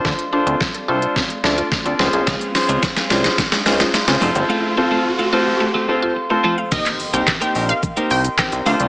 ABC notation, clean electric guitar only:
X:1
M:4/4
L:1/16
Q:1/4=108
K:Cdor
V:1 name="Clean electric guitar"
z16 | [_A,CF_A]2 z [A,CFA] z [A,CFA] [A,CFA] z2 [A,CFA] [A,CFA] z3 [=A,CF=A] z | [A,CFA]2 z [A,CFA] z [A,CFA] [A,CFA] z2 [A,CFA] [A,CFA] z3 [A,CFA] z | [B,EGB] z2 [B,EGB] z [B,EGB] [B,EGB] z2 [B,EGB] z4 [A,CFA] [A,CFA] |]